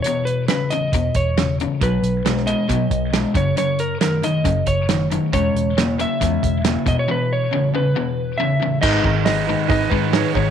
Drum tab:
CC |----------------|----------------|----------------|----------------|
HH |x-x-x-x-x-x-x-x-|x-x-x-x-x-x-x-x-|x-x-x-x-x-x-x-x-|x-x-x-x-x-x-x-x-|
SD |----o-------o---|----oo------o---|----o-------o---|----o-------o---|
BD |--------o-o-----|o-------o-o---o-|--------o-o-----|o-------o-o---o-|

CC |----------------|x---------------|
HH |----------------|----o---o---o---|
SD |----------------|----o-------o---|
BD |----------------|o-o-----o-o---o-|